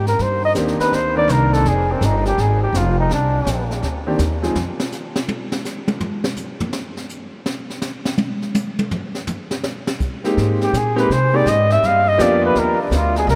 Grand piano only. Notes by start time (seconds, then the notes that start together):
0.56 D#3 A#3 C4 D4 G4
1.16 D#3 A#3 C4 D4 A#4
4.07 D#3 A#3 C4 D4 G4
4.42 F3 G#3 C4 D#4 G#4
10.24 G#3 A#3 C4 D#4 G4
10.96 G#3 A#3 C4 D#4 G4
11.33 G#3 A#3 C4 D#4 G4
12.18 F3 A#3 B3 D4 G4